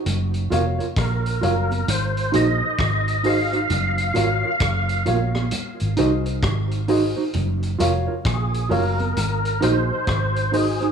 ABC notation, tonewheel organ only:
X:1
M:4/4
L:1/8
Q:"Swing 16ths" 1/4=66
K:Gblyd
V:1 name="Tonewheel organ"
z2 B B c e2 f- | f3 z4 z | z2 A B2 c2 A |]